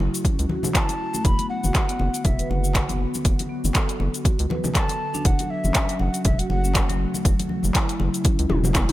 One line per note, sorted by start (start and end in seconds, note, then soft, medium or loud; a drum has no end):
0.00 1.21 C#3 medium
0.00 1.21 F#3 medium
0.00 1.21 A3 medium
0.00 5.21 F#4 medium
0.00 muted conga soft
0.14 closed hi-hat soft
0.14 shaker medium
0.24 0.38 C#4 medium
0.24 kick loud
0.24 closed hi-hat medium
0.24 muted conga soft
0.24 high conga medium
0.24 shaker medium
0.39 0.46 C#2 loud
0.39 closed hi-hat soft
0.39 shaker soft
0.49 0.57 F#4 medium
0.49 muted conga soft
0.49 high conga loud
0.63 high conga loud
0.63 low conga loud
0.63 shaker medium
0.74 1.26 A5 loud
0.74 finger snap loud
0.74 kick loud
0.74 clap loud
0.74 closed hi-hat medium
0.74 shaker medium
0.89 closed hi-hat soft
0.89 muted conga soft
0.89 shaker soft
1.13 1.23 A3 loud
1.13 muted conga soft
1.13 shaker medium
1.24 1.34 F#1 medium
1.24 5.21 D3 medium
1.24 8.92 F#3 medium
1.24 5.21 B3 medium
1.24 1.49 B5 loud
1.24 kick loud
1.24 closed hi-hat medium
1.24 low conga medium
1.24 shaker medium
1.39 1.45 B3 medium
1.39 closed hi-hat soft
1.39 muted conga soft
1.39 shaker soft
1.50 2.26 F#5 loud
1.64 1.71 F#1 medium
1.64 1.73 F#4 medium
1.64 muted conga soft
1.64 high conga medium
1.64 shaker medium
1.75 finger snap loud
1.75 kick loud
1.75 clap loud
1.75 closed hi-hat medium
1.75 shaker medium
1.89 1.98 B3 loud
1.89 closed hi-hat soft
1.89 shaker soft
1.99 2.09 F#1 loud
1.99 muted conga medium
2.14 2.20 B3 medium
2.14 closed hi-hat soft
2.14 shaker medium
2.24 2.42 E1 medium
2.24 2.51 E5 medium
2.24 kick loud
2.24 closed hi-hat medium
2.24 muted conga soft
2.24 high conga medium
2.24 low conga medium
2.24 shaker medium
2.39 2.49 B4 loud
2.39 closed hi-hat soft
2.39 shaker soft
2.50 3.06 F#1 medium
2.50 3.00 F#5 loud
2.50 muted conga soft
2.64 2.73 F#4 medium
2.64 shaker medium
2.75 finger snap loud
2.75 kick loud
2.75 clap loud
2.75 closed hi-hat medium
2.75 shaker medium
2.89 2.99 B3 loud
2.89 closed hi-hat soft
2.89 muted conga soft
2.89 high conga medium
2.89 shaker soft
3.14 muted conga soft
3.14 shaker medium
3.25 3.34 F#1 loud
3.25 kick loud
3.25 closed hi-hat medium
3.25 shaker medium
3.39 closed hi-hat soft
3.39 muted conga medium
3.39 shaker soft
3.49 3.63 B3 medium
3.64 3.71 F#1 medium
3.64 muted conga soft
3.64 high conga medium
3.64 shaker medium
3.74 3.82 A4 loud
3.74 finger snap loud
3.74 kick loud
3.74 clap loud
3.74 closed hi-hat medium
3.74 shaker medium
3.89 closed hi-hat soft
3.89 shaker soft
4.00 4.09 F#1 loud
4.00 4.07 B3 medium
4.00 muted conga medium
4.14 closed hi-hat soft
4.14 shaker medium
4.25 4.38 F#4 medium
4.25 kick loud
4.25 closed hi-hat medium
4.25 muted conga soft
4.25 high conga medium
4.25 shaker medium
4.39 4.46 C#2 loud
4.39 closed hi-hat soft
4.39 shaker soft
4.50 4.57 B4 medium
4.50 muted conga medium
4.50 high conga loud
4.64 high conga loud
4.64 low conga loud
4.64 shaker medium
4.75 4.82 A4 loud
4.75 5.27 A5 loud
4.75 finger snap loud
4.75 kick loud
4.75 clap loud
4.75 closed hi-hat medium
4.75 shaker medium
4.89 closed hi-hat soft
4.89 muted conga soft
4.89 shaker soft
5.14 5.24 D4 loud
5.14 muted conga soft
5.14 shaker medium
5.25 5.34 F#1 medium
5.25 8.92 C#3 medium
5.25 8.92 A3 medium
5.25 7.23 F#4 medium
5.25 5.52 F#5 loud
5.25 kick loud
5.25 closed hi-hat medium
5.25 low conga medium
5.25 shaker medium
5.39 5.45 F#3 medium
5.39 closed hi-hat soft
5.39 muted conga medium
5.39 shaker soft
5.50 6.02 E5 loud
5.64 5.71 F#1 medium
5.64 5.74 C#4 medium
5.64 muted conga soft
5.64 high conga medium
5.64 shaker medium
5.75 finger snap loud
5.75 kick loud
5.75 clap loud
5.75 closed hi-hat medium
5.75 shaker medium
5.89 5.99 F#3 loud
5.89 closed hi-hat soft
5.89 shaker soft
5.99 6.09 F#1 loud
5.99 6.24 F#5 medium
5.99 muted conga medium
6.14 6.20 F#3 medium
6.14 closed hi-hat soft
6.14 shaker medium
6.25 6.42 E1 medium
6.25 6.40 E5 medium
6.25 kick loud
6.25 closed hi-hat medium
6.25 muted conga soft
6.25 high conga medium
6.25 low conga medium
6.25 shaker medium
6.39 6.49 F#4 medium
6.39 6.50 F#5 medium
6.39 closed hi-hat soft
6.39 shaker soft
6.50 7.06 F#1 medium
6.50 6.97 F#5 loud
6.50 muted conga medium
6.64 6.74 C#4 medium
6.64 shaker medium
6.75 finger snap loud
6.75 kick loud
6.75 clap loud
6.75 closed hi-hat medium
6.75 shaker medium
6.89 6.99 F#3 loud
6.89 closed hi-hat soft
6.89 muted conga soft
6.89 high conga medium
6.89 shaker soft
7.14 muted conga medium
7.14 shaker medium
7.24 7.34 F#1 loud
7.24 7.38 F#3 medium
7.24 8.92 E4 medium
7.24 kick loud
7.24 closed hi-hat medium
7.24 shaker medium
7.39 closed hi-hat soft
7.39 muted conga medium
7.39 shaker soft
7.49 7.63 F#3 medium
7.49 high conga medium
7.63 7.71 F#1 medium
7.63 muted conga soft
7.63 high conga medium
7.63 shaker medium
7.75 7.82 E4 loud
7.75 finger snap loud
7.75 kick loud
7.75 clap loud
7.75 closed hi-hat medium
7.75 shaker medium
7.89 closed hi-hat soft
7.89 shaker soft
8.00 8.09 F#1 loud
8.00 8.07 F#3 medium
8.00 muted conga medium
8.14 closed hi-hat soft
8.14 shaker medium
8.24 8.38 C#4 medium
8.24 kick loud
8.24 closed hi-hat medium
8.24 muted conga soft
8.24 high conga medium
8.24 shaker medium
8.39 8.46 C#2 loud
8.39 closed hi-hat medium
8.39 shaker soft
8.49 8.92 E1 medium
8.49 8.57 F#4 medium
8.49 high tom medium
8.49 muted conga medium
8.49 high conga loud
8.64 high conga medium
8.64 low conga loud
8.64 shaker medium
8.75 8.82 E4 loud
8.75 finger snap loud
8.75 kick loud
8.75 clap loud
8.75 closed hi-hat medium
8.75 mid tom medium
8.75 shaker medium
8.89 closed hi-hat medium
8.89 mid tom medium